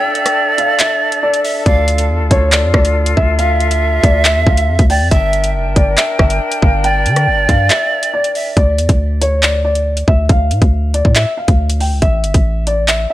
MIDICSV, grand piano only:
0, 0, Header, 1, 2, 480
1, 0, Start_track
1, 0, Key_signature, -1, "minor"
1, 0, Tempo, 431655
1, 1847, Time_signature, 4, 2, 24, 8
1, 14604, End_track
2, 0, Start_track
2, 0, Title_t, "Grand piano"
2, 0, Program_c, 0, 0
2, 0, Note_on_c, 0, 79, 115
2, 604, Note_off_c, 0, 79, 0
2, 647, Note_on_c, 0, 77, 91
2, 834, Note_off_c, 0, 77, 0
2, 889, Note_on_c, 0, 76, 88
2, 1339, Note_off_c, 0, 76, 0
2, 1367, Note_on_c, 0, 74, 91
2, 1818, Note_off_c, 0, 74, 0
2, 1846, Note_on_c, 0, 74, 103
2, 2523, Note_off_c, 0, 74, 0
2, 2567, Note_on_c, 0, 73, 98
2, 2754, Note_off_c, 0, 73, 0
2, 2806, Note_on_c, 0, 74, 86
2, 2993, Note_off_c, 0, 74, 0
2, 3045, Note_on_c, 0, 74, 89
2, 3497, Note_off_c, 0, 74, 0
2, 3525, Note_on_c, 0, 76, 93
2, 3713, Note_off_c, 0, 76, 0
2, 3766, Note_on_c, 0, 77, 107
2, 4443, Note_off_c, 0, 77, 0
2, 4487, Note_on_c, 0, 74, 83
2, 4673, Note_off_c, 0, 74, 0
2, 4727, Note_on_c, 0, 76, 93
2, 4914, Note_off_c, 0, 76, 0
2, 4966, Note_on_c, 0, 77, 88
2, 5417, Note_off_c, 0, 77, 0
2, 5446, Note_on_c, 0, 79, 83
2, 5633, Note_off_c, 0, 79, 0
2, 5685, Note_on_c, 0, 76, 106
2, 6363, Note_off_c, 0, 76, 0
2, 6407, Note_on_c, 0, 74, 90
2, 6593, Note_off_c, 0, 74, 0
2, 6647, Note_on_c, 0, 76, 87
2, 6834, Note_off_c, 0, 76, 0
2, 6888, Note_on_c, 0, 76, 83
2, 7339, Note_off_c, 0, 76, 0
2, 7364, Note_on_c, 0, 77, 83
2, 7552, Note_off_c, 0, 77, 0
2, 7607, Note_on_c, 0, 79, 105
2, 8283, Note_off_c, 0, 79, 0
2, 8326, Note_on_c, 0, 77, 94
2, 8513, Note_off_c, 0, 77, 0
2, 8565, Note_on_c, 0, 76, 89
2, 9017, Note_off_c, 0, 76, 0
2, 9047, Note_on_c, 0, 74, 90
2, 9498, Note_off_c, 0, 74, 0
2, 9528, Note_on_c, 0, 74, 100
2, 10204, Note_off_c, 0, 74, 0
2, 10246, Note_on_c, 0, 73, 88
2, 10433, Note_off_c, 0, 73, 0
2, 10487, Note_on_c, 0, 74, 88
2, 10674, Note_off_c, 0, 74, 0
2, 10726, Note_on_c, 0, 74, 84
2, 11177, Note_off_c, 0, 74, 0
2, 11206, Note_on_c, 0, 76, 86
2, 11393, Note_off_c, 0, 76, 0
2, 11445, Note_on_c, 0, 77, 92
2, 12122, Note_off_c, 0, 77, 0
2, 12166, Note_on_c, 0, 74, 84
2, 12353, Note_off_c, 0, 74, 0
2, 12407, Note_on_c, 0, 76, 96
2, 12594, Note_off_c, 0, 76, 0
2, 12648, Note_on_c, 0, 77, 78
2, 13098, Note_off_c, 0, 77, 0
2, 13125, Note_on_c, 0, 79, 76
2, 13312, Note_off_c, 0, 79, 0
2, 13366, Note_on_c, 0, 76, 105
2, 14043, Note_off_c, 0, 76, 0
2, 14088, Note_on_c, 0, 74, 92
2, 14275, Note_off_c, 0, 74, 0
2, 14327, Note_on_c, 0, 76, 88
2, 14514, Note_off_c, 0, 76, 0
2, 14569, Note_on_c, 0, 76, 80
2, 14604, Note_off_c, 0, 76, 0
2, 14604, End_track
0, 0, End_of_file